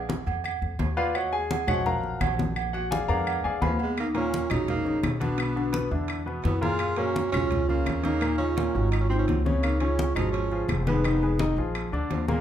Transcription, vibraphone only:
3.66 A#3
3.83 B3
4.00 D#4
4.16 F4
4.51 F#4
4.68 D#4
5.21 D4
6.44 E4
6.62 G#4
6.97 F#4
7.33 F4
7.68 C#4
8.04 D#4
8.39 F4
9.02 F4
9.11 D#4
9.18 F4
9.27 A#3
9.45 C4
9.64 D#4
9.80 F4
10.16 F#4
10.33 F4
10.87 D#4
12.11 A#3
12.28 B3

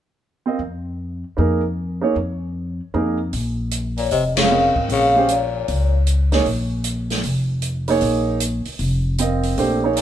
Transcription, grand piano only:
0.46 C4 F4 A#4 D#5
1.37 A#3 D#4 G#4 A#4
2.01 A#3 D#4 G#4 C#5
2.94 A#3 D#4 G#4 A#4
4.51 C4 F4 A#4 D#5
5.16 G#3 C#4 G4 C5
6.32 A#3 D#4 G#4 C#5
7.88 A#3 D#4 G#4 C#5
9.19 C4 F4 A#4 D#5
9.58 A3 D4 G4 C5
9.84 A#3 D#4 G#4 C#5

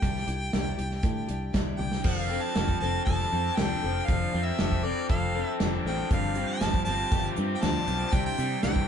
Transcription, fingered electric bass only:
0.03 C2
0.28 C2
0.54 C2
0.78 C2
1.04 A2
1.29 C2
1.54 C2
1.79 C2
2.04 F1
2.56 F1
2.82 F1
3.07 F1
3.32 F2
3.58 C2
3.84 F1
4.09 F1
4.34 F2
4.59 F1
5.10 F1
5.60 F1
5.85 A1
6.11 G1
6.61 G1
6.87 G1
7.12 G1
7.38 G2
7.63 D2
7.88 B1
8.13 C2
8.39 C3
8.64 C2

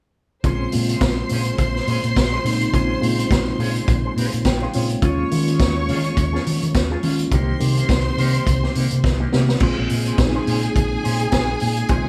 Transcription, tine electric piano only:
0.44 C#3 G#3 A#3 C4 F4
0.71 C#3 G#3 A#3 C4 F4
2.44 C#3 G#3 A#3 C4 D#4
2.72 C#3 G#3 A#3 C4 F4
3.00 C#3 G#3 A#3 C4 F4
4.45 G5
4.62 F5
4.74 C#3 G#3 A#3 C4 F4 C#5
5.02 D#3 G#3 A#3 C#4 F4
5.31 D#3 G#3 A#3 C#4 F4
7.03 D#3 G#3 A#3 C#4 F4
7.31 D#3 G3 A#3 C4 G4
7.60 D#3 G3 A#3 C4 G4
9.31 D#3 G3 A#3 C4 G4
9.60 C#3 G#3 A#3 C4 F4
10.17 C#3 G#3 A#3 C4 D#4
11.89 C#3 G#3 A#3 C4 F4

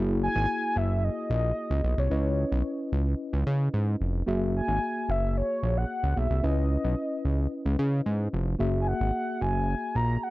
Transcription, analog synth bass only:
Already playing: F#1
0.36 G#1
0.76 F#1
1.30 A#1
1.70 C#2
1.84 B1
1.98 C2
2.11 C#2
2.52 B1
2.92 C#2
3.33 C#2
3.47 C#3
3.74 G#2
4.01 F1
4.28 F#1
4.68 G#1
5.09 F#1
5.63 A#1
6.03 C#2
6.17 B1
6.30 C2
6.44 C#2
6.84 B1
7.25 C#2
7.65 C#2
7.79 C#3
8.06 G#2
8.33 F1
8.60 F#1
9.00 G#1
9.41 F#1
9.95 A#1

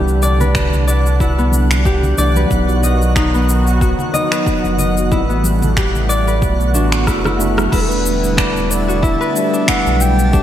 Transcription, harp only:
Already playing: B3 E4 G4 B4 D5
0.23 D5
0.40 B4
0.87 D5
1.20 E4
1.38 B3
1.86 G4
2.18 D5
2.36 B4
2.83 D#5
3.16 D#4
3.34 B3
3.81 F#4
4.14 D#5
4.32 B4
4.79 D#5
5.12 E4
5.29 B3
5.76 G4
6.09 D5
6.27 B4
6.74 D4
7.07 E4
7.25 E4
7.72 E4
8.37 D4
8.88 F#4
9.02 E4
9.21 B4
9.53 D4
9.68 E4
10.33 D4

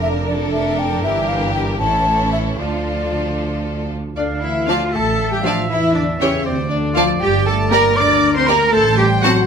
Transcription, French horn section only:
4.16 D3
4.44 E3
4.71 F3
4.93 A3
5.33 G3
5.46 F3
5.69 E3
5.97 D3
6.21 C#3
6.49 C3
6.70 D3
6.97 F3
7.22 G3
7.49 A3
7.73 A#3
7.99 D4
8.37 C4
8.47 A#3
8.72 A3
8.97 G3
9.23 F#3

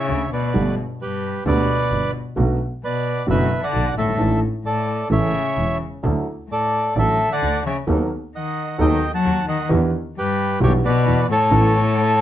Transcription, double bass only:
0.09 D2
0.55 G1
1.46 D2
1.92 G1
2.37 B1
3.29 F#1
3.74 B1
3.97 G1
4.19 A1
5.11 A1
5.58 E1
6.04 D2
6.96 A1
7.42 D2
7.88 D#2
8.80 D#2
9.25 D#2
9.70 E2
10.61 B1
11.06 E2
11.51 A1

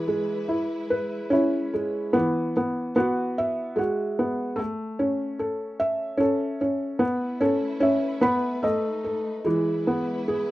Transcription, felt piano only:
Already playing: E3 G#4
0.08 G#3
0.48 E4
0.90 B4
1.30 C#4 E4
1.74 G#3
2.13 E3 B3
2.57 B3
2.96 B3 F#4
3.38 E5
3.76 G#3 F#4
4.19 B3
4.56 A3
4.99 C#4
5.39 A4
5.80 E5
6.17 C#4 A4
6.61 C#4
6.99 B3
7.41 C#4 A4
7.80 C#4 E5
8.21 B3 B5
8.63 A3 D#5
9.04 A4
9.45 E3 G#3
9.87 B3
10.28 G#4

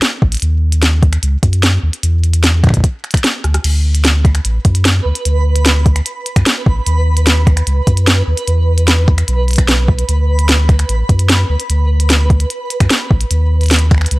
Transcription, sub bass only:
0.22 A1
0.42 D#2
1.23 C#2
1.43 F#2
1.83 D#2
2.03 E2
3.44 D2
3.64 D2
4.45 A1
4.65 F#2
5.05 D2
5.25 D2
6.36 F#2
6.66 A1
6.87 D#2
7.67 C#2
7.87 F#2
8.27 D#2
8.48 E2
9.28 B1
10.09 D2
10.89 A1
11.09 F#2
11.49 D2
11.70 D2
12.80 F#2
13.11 A1
13.31 D#2
14.11 C#2

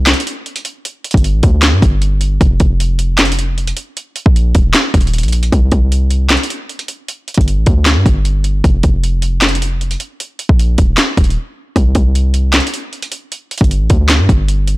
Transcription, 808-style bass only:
Already playing: C2
1.14 G1
1.34 A1
1.43 D2
1.73 G2
1.82 G1
2.41 F1
2.60 F1
4.26 A#1
4.55 D#1
4.94 D#1
5.23 A#1
5.52 C2
5.72 C2
7.38 G1
7.57 A1
7.67 D2
7.96 G2
8.06 G1
8.64 F1
8.84 F1
10.49 A#1
10.78 D#1
11.17 D#1
11.76 C2
11.95 C2
13.61 G1
13.80 A1
13.90 D2
14.19 G2
14.29 G1

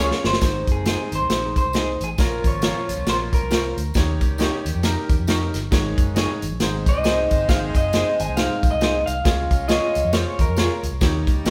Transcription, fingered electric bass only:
0.24 G1
0.42 G#1
0.67 F#1
1.12 G#1
1.21 C2
1.30 A#1
1.66 C2
2.01 A1
2.18 A#1
2.44 G#1
2.89 A#1
2.98 C2
3.06 A#1
3.42 C2
3.77 D2
3.95 D#2
4.21 C#2
4.65 D#2
4.75 F2
5.10 D#2
5.19 F2
5.54 G1
5.72 G#1
5.98 F#1
6.43 G#1
6.51 A#1
6.60 G#1
6.86 A#1
6.96 C2
7.31 G1
7.49 G#1
7.75 F#1
8.20 G#1
8.28 C2
8.63 A#1
8.73 C2
9.08 C2
9.25 C#2
9.51 C2
9.96 C#2
10.04 F2
10.39 D#2
10.48 F2
10.83 C#2
10.91 C2
11.01 D#2
11.27 C#2
11.45 A#1

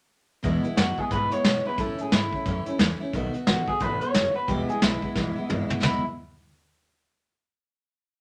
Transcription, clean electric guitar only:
0.77 F#4
0.98 G#4
1.12 B4
1.32 C#5
1.67 B4
1.79 A4
2.01 G#4
2.13 E4
3.47 F#4
3.68 G#4
3.81 B4
4.01 C#5
4.36 B4
4.48 G4
4.69 G#4
4.82 E4
5.83 E4

